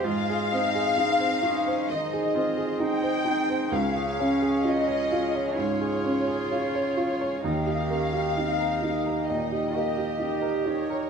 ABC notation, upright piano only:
X:1
M:4/4
L:1/16
Q:1/4=65
K:Dblyd
V:1 name="Upright piano"
A,, A C A E c E c E, A C A E c E c | D,, A D A F d F d A,, A D A F d F d | E,, G B, G E B E B B,, G B, G E B E B |]